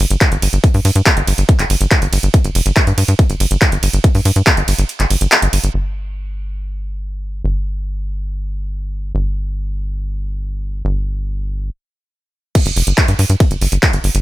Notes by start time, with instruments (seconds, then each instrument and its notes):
0.10 analog synth bass G1, closed hi-hat
0.21 kick, clap, closed hi-hat
0.32 analog synth bass G1, closed hi-hat
0.42 analog synth bass G1, open hi-hat, ride
0.53 analog synth bass G1, closed hi-hat
0.64 kick, closed hi-hat
0.74 analog synth bass G2, open hi-hat
0.85 analog synth bass G2, open hi-hat, ride
0.96 analog synth bass G2, closed hi-hat
1.06 kick, clap, closed hi-hat
1.17 analog synth bass G1, closed hi-hat
1.27 analog synth bass G1, open hi-hat, ride
1.38 analog synth bass G1, closed hi-hat
1.49 kick, closed hi-hat
1.59 analog synth bass G1, clap, closed hi-hat
1.70 analog synth bass G1, open hi-hat, ride
1.81 analog synth bass G1, closed hi-hat
1.91 kick, clap, closed hi-hat
2.02 analog synth bass G1, closed hi-hat
2.13 analog synth bass G1, open hi-hat, ride
2.23 analog synth bass G1, closed hi-hat
2.34 kick, closed hi-hat
2.44 analog synth bass G1, closed hi-hat
2.55 analog synth bass F1, open hi-hat, ride
2.66 analog synth bass G1, closed hi-hat
2.76 kick, clap, closed hi-hat
2.87 analog synth bass G2, closed hi-hat
2.98 analog synth bass G2, open hi-hat, ride
3.08 analog synth bass G2, closed hi-hat
3.19 kick, closed hi-hat
3.30 analog synth bass G1, closed hi-hat
3.40 analog synth bass G1, open hi-hat, ride
3.51 analog synth bass G1, closed hi-hat
3.62 kick, clap, closed hi-hat
3.72 analog synth bass G1, closed hi-hat
3.83 analog synth bass G1, open hi-hat, ride
3.93 analog synth bass G1, closed hi-hat
4.04 kick, closed hi-hat
4.15 analog synth bass G2, open hi-hat
4.25 analog synth bass G2, open hi-hat, ride
4.36 analog synth bass G2, closed hi-hat
4.47 kick, clap, closed hi-hat
4.57 analog synth bass G1, closed hi-hat
4.68 analog synth bass G1, open hi-hat, ride
4.79 analog synth bass G1, closed hi-hat
4.89 closed hi-hat
5.00 analog synth bass G1, clap, closed hi-hat
5.10 analog synth bass G1, open hi-hat, ride
5.21 analog synth bass G1, closed hi-hat
5.32 clap, closed hi-hat
5.42 analog synth bass G1, closed hi-hat
5.53 analog synth bass G1, open hi-hat, ride
5.64 analog synth bass G1, closed hi-hat
5.74 analog synth bass G1
7.44 analog synth bass G1
9.15 analog synth bass G1
10.85 analog synth bass G1
12.55 kick, closed hi-hat, ride, crash
12.66 analog synth bass G1, closed hi-hat
12.76 analog synth bass F1, open hi-hat
12.87 analog synth bass G1, closed hi-hat
12.98 kick, clap, closed hi-hat, ride
13.08 analog synth bass G2, closed hi-hat
13.19 analog synth bass G2, open hi-hat
13.30 analog synth bass G2, closed hi-hat
13.40 kick, closed hi-hat, ride
13.51 analog synth bass G1, closed hi-hat
13.61 analog synth bass G1, open hi-hat
13.72 analog synth bass G1, closed hi-hat
13.83 kick, clap, closed hi-hat, ride
13.93 analog synth bass G1, closed hi-hat
14.04 analog synth bass G1, open hi-hat
14.15 analog synth bass G1, closed hi-hat